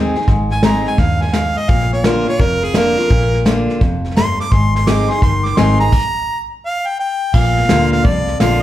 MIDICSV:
0, 0, Header, 1, 5, 480
1, 0, Start_track
1, 0, Tempo, 352941
1, 388, Time_signature, 4, 2, 24, 8
1, 11731, End_track
2, 0, Start_track
2, 0, Title_t, "Harmonica"
2, 0, Program_c, 0, 22
2, 696, Note_on_c, 0, 80, 91
2, 861, Note_off_c, 0, 80, 0
2, 869, Note_on_c, 0, 82, 82
2, 1168, Note_off_c, 0, 82, 0
2, 1190, Note_on_c, 0, 80, 87
2, 1356, Note_on_c, 0, 77, 87
2, 1377, Note_off_c, 0, 80, 0
2, 1658, Note_on_c, 0, 80, 79
2, 1678, Note_off_c, 0, 77, 0
2, 1823, Note_on_c, 0, 77, 88
2, 1843, Note_off_c, 0, 80, 0
2, 2138, Note_on_c, 0, 75, 104
2, 2159, Note_off_c, 0, 77, 0
2, 2304, Note_on_c, 0, 77, 95
2, 2325, Note_off_c, 0, 75, 0
2, 2605, Note_off_c, 0, 77, 0
2, 2624, Note_on_c, 0, 73, 83
2, 2798, Note_on_c, 0, 70, 78
2, 2818, Note_off_c, 0, 73, 0
2, 3092, Note_off_c, 0, 70, 0
2, 3107, Note_on_c, 0, 73, 94
2, 3280, Note_on_c, 0, 70, 103
2, 3300, Note_off_c, 0, 73, 0
2, 3585, Note_on_c, 0, 68, 83
2, 3606, Note_off_c, 0, 70, 0
2, 3763, Note_on_c, 0, 70, 109
2, 3783, Note_off_c, 0, 68, 0
2, 4685, Note_off_c, 0, 70, 0
2, 5668, Note_on_c, 0, 84, 113
2, 5966, Note_off_c, 0, 84, 0
2, 5989, Note_on_c, 0, 86, 93
2, 6151, Note_on_c, 0, 84, 105
2, 6172, Note_off_c, 0, 86, 0
2, 6448, Note_off_c, 0, 84, 0
2, 6467, Note_on_c, 0, 84, 92
2, 6640, Note_on_c, 0, 86, 80
2, 6661, Note_off_c, 0, 84, 0
2, 6944, Note_on_c, 0, 84, 93
2, 6964, Note_off_c, 0, 86, 0
2, 7100, Note_off_c, 0, 84, 0
2, 7108, Note_on_c, 0, 84, 97
2, 7415, Note_on_c, 0, 86, 83
2, 7435, Note_off_c, 0, 84, 0
2, 7581, Note_on_c, 0, 84, 93
2, 7601, Note_off_c, 0, 86, 0
2, 7876, Note_off_c, 0, 84, 0
2, 7884, Note_on_c, 0, 82, 113
2, 8820, Note_off_c, 0, 82, 0
2, 9040, Note_on_c, 0, 77, 89
2, 9335, Note_on_c, 0, 79, 95
2, 9355, Note_off_c, 0, 77, 0
2, 9500, Note_off_c, 0, 79, 0
2, 9516, Note_on_c, 0, 79, 96
2, 9985, Note_on_c, 0, 77, 113
2, 10006, Note_off_c, 0, 79, 0
2, 10770, Note_off_c, 0, 77, 0
2, 10778, Note_on_c, 0, 77, 99
2, 10951, Note_on_c, 0, 74, 103
2, 10971, Note_off_c, 0, 77, 0
2, 11414, Note_off_c, 0, 74, 0
2, 11422, Note_on_c, 0, 77, 103
2, 11731, Note_off_c, 0, 77, 0
2, 11731, End_track
3, 0, Start_track
3, 0, Title_t, "Steel-string acoustic guitar"
3, 0, Program_c, 1, 25
3, 0, Note_on_c, 1, 51, 84
3, 0, Note_on_c, 1, 56, 83
3, 0, Note_on_c, 1, 60, 91
3, 0, Note_on_c, 1, 63, 85
3, 0, Note_on_c, 1, 68, 90
3, 195, Note_off_c, 1, 68, 0
3, 196, Note_off_c, 1, 56, 0
3, 201, Note_off_c, 1, 60, 0
3, 202, Note_off_c, 1, 63, 0
3, 211, Note_on_c, 1, 68, 51
3, 233, Note_on_c, 1, 63, 41
3, 353, Note_off_c, 1, 51, 0
3, 378, Note_off_c, 1, 68, 0
3, 387, Note_on_c, 1, 44, 84
3, 389, Note_off_c, 1, 63, 0
3, 856, Note_on_c, 1, 56, 71
3, 865, Note_on_c, 1, 60, 63
3, 872, Note_on_c, 1, 63, 86
3, 876, Note_on_c, 1, 68, 71
3, 1313, Note_off_c, 1, 44, 0
3, 1324, Note_off_c, 1, 56, 0
3, 1328, Note_off_c, 1, 60, 0
3, 1332, Note_off_c, 1, 63, 0
3, 1334, Note_off_c, 1, 68, 0
3, 1342, Note_on_c, 1, 43, 77
3, 1807, Note_off_c, 1, 43, 0
3, 1815, Note_on_c, 1, 44, 89
3, 2283, Note_off_c, 1, 44, 0
3, 2295, Note_on_c, 1, 46, 85
3, 2777, Note_on_c, 1, 50, 57
3, 2788, Note_on_c, 1, 58, 75
3, 2791, Note_on_c, 1, 62, 69
3, 2797, Note_on_c, 1, 65, 78
3, 3076, Note_off_c, 1, 65, 0
3, 3078, Note_off_c, 1, 50, 0
3, 3084, Note_off_c, 1, 58, 0
3, 3085, Note_off_c, 1, 62, 0
3, 3092, Note_on_c, 1, 65, 57
3, 3109, Note_on_c, 1, 62, 41
3, 3226, Note_off_c, 1, 46, 0
3, 3256, Note_on_c, 1, 41, 89
3, 3257, Note_off_c, 1, 65, 0
3, 3265, Note_off_c, 1, 62, 0
3, 3734, Note_on_c, 1, 50, 91
3, 3745, Note_on_c, 1, 58, 77
3, 3752, Note_on_c, 1, 62, 82
3, 3755, Note_on_c, 1, 65, 96
3, 4031, Note_off_c, 1, 65, 0
3, 4036, Note_off_c, 1, 50, 0
3, 4042, Note_off_c, 1, 58, 0
3, 4046, Note_off_c, 1, 62, 0
3, 4047, Note_on_c, 1, 65, 58
3, 4070, Note_on_c, 1, 62, 42
3, 4186, Note_off_c, 1, 41, 0
3, 4214, Note_off_c, 1, 65, 0
3, 4216, Note_on_c, 1, 46, 87
3, 4226, Note_off_c, 1, 62, 0
3, 4697, Note_on_c, 1, 50, 70
3, 4703, Note_on_c, 1, 58, 74
3, 4710, Note_on_c, 1, 62, 78
3, 4716, Note_on_c, 1, 65, 83
3, 5146, Note_off_c, 1, 46, 0
3, 5163, Note_off_c, 1, 50, 0
3, 5167, Note_off_c, 1, 58, 0
3, 5170, Note_off_c, 1, 62, 0
3, 5173, Note_off_c, 1, 65, 0
3, 5186, Note_on_c, 1, 41, 82
3, 5648, Note_off_c, 1, 41, 0
3, 5664, Note_on_c, 1, 43, 83
3, 6127, Note_off_c, 1, 43, 0
3, 6150, Note_on_c, 1, 44, 83
3, 6622, Note_on_c, 1, 56, 72
3, 6629, Note_on_c, 1, 60, 74
3, 6632, Note_on_c, 1, 63, 78
3, 6641, Note_on_c, 1, 68, 84
3, 6912, Note_off_c, 1, 68, 0
3, 6920, Note_off_c, 1, 56, 0
3, 6924, Note_off_c, 1, 60, 0
3, 6925, Note_off_c, 1, 63, 0
3, 6929, Note_on_c, 1, 68, 52
3, 6953, Note_on_c, 1, 63, 46
3, 7073, Note_off_c, 1, 44, 0
3, 7095, Note_off_c, 1, 68, 0
3, 7107, Note_off_c, 1, 63, 0
3, 7111, Note_on_c, 1, 51, 81
3, 7577, Note_on_c, 1, 56, 80
3, 7586, Note_on_c, 1, 60, 90
3, 7594, Note_on_c, 1, 63, 88
3, 7594, Note_on_c, 1, 68, 100
3, 7874, Note_off_c, 1, 68, 0
3, 7878, Note_off_c, 1, 56, 0
3, 7882, Note_off_c, 1, 60, 0
3, 7887, Note_off_c, 1, 63, 0
3, 7891, Note_on_c, 1, 68, 55
3, 7918, Note_on_c, 1, 63, 41
3, 8034, Note_off_c, 1, 51, 0
3, 8056, Note_off_c, 1, 68, 0
3, 8070, Note_off_c, 1, 63, 0
3, 9983, Note_on_c, 1, 46, 81
3, 10469, Note_on_c, 1, 50, 72
3, 10476, Note_on_c, 1, 58, 89
3, 10480, Note_on_c, 1, 62, 72
3, 10485, Note_on_c, 1, 65, 93
3, 10911, Note_off_c, 1, 46, 0
3, 10931, Note_off_c, 1, 50, 0
3, 10934, Note_off_c, 1, 58, 0
3, 10936, Note_off_c, 1, 62, 0
3, 10939, Note_off_c, 1, 65, 0
3, 10951, Note_on_c, 1, 41, 80
3, 11427, Note_on_c, 1, 50, 80
3, 11432, Note_on_c, 1, 58, 91
3, 11439, Note_on_c, 1, 62, 101
3, 11449, Note_on_c, 1, 65, 99
3, 11715, Note_off_c, 1, 65, 0
3, 11724, Note_off_c, 1, 50, 0
3, 11727, Note_off_c, 1, 58, 0
3, 11730, Note_off_c, 1, 62, 0
3, 11731, Note_off_c, 1, 41, 0
3, 11731, End_track
4, 0, Start_track
4, 0, Title_t, "Fingered electric bass"
4, 0, Program_c, 2, 33
4, 0, Note_on_c, 2, 39, 77
4, 178, Note_off_c, 2, 39, 0
4, 379, Note_on_c, 2, 32, 85
4, 1137, Note_off_c, 2, 32, 0
4, 1338, Note_on_c, 2, 39, 80
4, 2096, Note_off_c, 2, 39, 0
4, 2305, Note_on_c, 2, 34, 85
4, 3059, Note_off_c, 2, 34, 0
4, 3260, Note_on_c, 2, 29, 81
4, 4016, Note_off_c, 2, 29, 0
4, 4227, Note_on_c, 2, 34, 91
4, 4981, Note_off_c, 2, 34, 0
4, 5186, Note_on_c, 2, 29, 83
4, 5940, Note_off_c, 2, 29, 0
4, 6146, Note_on_c, 2, 32, 93
4, 6900, Note_off_c, 2, 32, 0
4, 7103, Note_on_c, 2, 31, 80
4, 7512, Note_off_c, 2, 31, 0
4, 7592, Note_on_c, 2, 32, 86
4, 7997, Note_off_c, 2, 32, 0
4, 9985, Note_on_c, 2, 34, 94
4, 10363, Note_off_c, 2, 34, 0
4, 10471, Note_on_c, 2, 38, 85
4, 10877, Note_off_c, 2, 38, 0
4, 10946, Note_on_c, 2, 36, 85
4, 11354, Note_off_c, 2, 36, 0
4, 11434, Note_on_c, 2, 34, 77
4, 11731, Note_off_c, 2, 34, 0
4, 11731, End_track
5, 0, Start_track
5, 0, Title_t, "Drums"
5, 208, Note_on_c, 9, 38, 35
5, 294, Note_off_c, 9, 38, 0
5, 294, Note_on_c, 9, 38, 31
5, 372, Note_off_c, 9, 38, 0
5, 372, Note_on_c, 9, 38, 33
5, 377, Note_on_c, 9, 36, 94
5, 508, Note_off_c, 9, 38, 0
5, 513, Note_off_c, 9, 36, 0
5, 686, Note_on_c, 9, 38, 34
5, 822, Note_off_c, 9, 38, 0
5, 852, Note_on_c, 9, 38, 119
5, 852, Note_on_c, 9, 44, 86
5, 988, Note_off_c, 9, 38, 0
5, 988, Note_off_c, 9, 44, 0
5, 1164, Note_on_c, 9, 38, 31
5, 1300, Note_off_c, 9, 38, 0
5, 1330, Note_on_c, 9, 38, 37
5, 1336, Note_on_c, 9, 36, 100
5, 1466, Note_off_c, 9, 38, 0
5, 1472, Note_off_c, 9, 36, 0
5, 1647, Note_on_c, 9, 38, 34
5, 1737, Note_off_c, 9, 38, 0
5, 1737, Note_on_c, 9, 38, 34
5, 1815, Note_off_c, 9, 38, 0
5, 1815, Note_on_c, 9, 38, 102
5, 1815, Note_on_c, 9, 44, 83
5, 1951, Note_off_c, 9, 38, 0
5, 1951, Note_off_c, 9, 44, 0
5, 2128, Note_on_c, 9, 38, 35
5, 2264, Note_off_c, 9, 38, 0
5, 2296, Note_on_c, 9, 38, 30
5, 2299, Note_on_c, 9, 36, 112
5, 2432, Note_off_c, 9, 38, 0
5, 2435, Note_off_c, 9, 36, 0
5, 2452, Note_on_c, 9, 38, 27
5, 2588, Note_off_c, 9, 38, 0
5, 2615, Note_on_c, 9, 38, 33
5, 2751, Note_off_c, 9, 38, 0
5, 2776, Note_on_c, 9, 38, 123
5, 2776, Note_on_c, 9, 44, 90
5, 2912, Note_off_c, 9, 38, 0
5, 2912, Note_off_c, 9, 44, 0
5, 3090, Note_on_c, 9, 38, 33
5, 3226, Note_off_c, 9, 38, 0
5, 3254, Note_on_c, 9, 38, 34
5, 3258, Note_on_c, 9, 36, 113
5, 3390, Note_off_c, 9, 38, 0
5, 3394, Note_off_c, 9, 36, 0
5, 3565, Note_on_c, 9, 38, 36
5, 3701, Note_off_c, 9, 38, 0
5, 3730, Note_on_c, 9, 38, 104
5, 3730, Note_on_c, 9, 44, 80
5, 3866, Note_off_c, 9, 38, 0
5, 3866, Note_off_c, 9, 44, 0
5, 4054, Note_on_c, 9, 38, 37
5, 4190, Note_off_c, 9, 38, 0
5, 4217, Note_on_c, 9, 38, 29
5, 4223, Note_on_c, 9, 36, 95
5, 4353, Note_off_c, 9, 38, 0
5, 4359, Note_off_c, 9, 36, 0
5, 4377, Note_on_c, 9, 38, 26
5, 4513, Note_off_c, 9, 38, 0
5, 4533, Note_on_c, 9, 38, 31
5, 4669, Note_off_c, 9, 38, 0
5, 4702, Note_on_c, 9, 38, 116
5, 4702, Note_on_c, 9, 44, 85
5, 4838, Note_off_c, 9, 38, 0
5, 4838, Note_off_c, 9, 44, 0
5, 5023, Note_on_c, 9, 38, 30
5, 5159, Note_off_c, 9, 38, 0
5, 5185, Note_on_c, 9, 36, 112
5, 5187, Note_on_c, 9, 38, 34
5, 5321, Note_off_c, 9, 36, 0
5, 5323, Note_off_c, 9, 38, 0
5, 5501, Note_on_c, 9, 38, 36
5, 5583, Note_off_c, 9, 38, 0
5, 5583, Note_on_c, 9, 38, 31
5, 5671, Note_off_c, 9, 38, 0
5, 5671, Note_on_c, 9, 38, 107
5, 5671, Note_on_c, 9, 44, 77
5, 5807, Note_off_c, 9, 38, 0
5, 5807, Note_off_c, 9, 44, 0
5, 5986, Note_on_c, 9, 38, 38
5, 6122, Note_off_c, 9, 38, 0
5, 6145, Note_on_c, 9, 36, 106
5, 6148, Note_on_c, 9, 38, 32
5, 6281, Note_off_c, 9, 36, 0
5, 6284, Note_off_c, 9, 38, 0
5, 6460, Note_on_c, 9, 38, 35
5, 6596, Note_off_c, 9, 38, 0
5, 6626, Note_on_c, 9, 38, 127
5, 6626, Note_on_c, 9, 44, 93
5, 6762, Note_off_c, 9, 38, 0
5, 6762, Note_off_c, 9, 44, 0
5, 6932, Note_on_c, 9, 38, 30
5, 7068, Note_off_c, 9, 38, 0
5, 7099, Note_on_c, 9, 38, 37
5, 7101, Note_on_c, 9, 36, 111
5, 7235, Note_off_c, 9, 38, 0
5, 7237, Note_off_c, 9, 36, 0
5, 7412, Note_on_c, 9, 38, 36
5, 7548, Note_off_c, 9, 38, 0
5, 7578, Note_on_c, 9, 38, 111
5, 7578, Note_on_c, 9, 44, 89
5, 7714, Note_off_c, 9, 38, 0
5, 7714, Note_off_c, 9, 44, 0
5, 7892, Note_on_c, 9, 38, 36
5, 8028, Note_off_c, 9, 38, 0
5, 8057, Note_on_c, 9, 49, 83
5, 8058, Note_on_c, 9, 36, 105
5, 8193, Note_off_c, 9, 49, 0
5, 8194, Note_off_c, 9, 36, 0
5, 9979, Note_on_c, 9, 38, 33
5, 9979, Note_on_c, 9, 49, 103
5, 9983, Note_on_c, 9, 36, 109
5, 10115, Note_off_c, 9, 38, 0
5, 10115, Note_off_c, 9, 49, 0
5, 10119, Note_off_c, 9, 36, 0
5, 10295, Note_on_c, 9, 38, 35
5, 10377, Note_off_c, 9, 38, 0
5, 10377, Note_on_c, 9, 38, 32
5, 10459, Note_off_c, 9, 38, 0
5, 10459, Note_on_c, 9, 38, 125
5, 10459, Note_on_c, 9, 44, 94
5, 10595, Note_off_c, 9, 38, 0
5, 10595, Note_off_c, 9, 44, 0
5, 10775, Note_on_c, 9, 38, 30
5, 10911, Note_off_c, 9, 38, 0
5, 10946, Note_on_c, 9, 36, 127
5, 10946, Note_on_c, 9, 38, 34
5, 11082, Note_off_c, 9, 36, 0
5, 11082, Note_off_c, 9, 38, 0
5, 11253, Note_on_c, 9, 38, 40
5, 11389, Note_off_c, 9, 38, 0
5, 11424, Note_on_c, 9, 38, 108
5, 11424, Note_on_c, 9, 44, 100
5, 11560, Note_off_c, 9, 38, 0
5, 11560, Note_off_c, 9, 44, 0
5, 11731, End_track
0, 0, End_of_file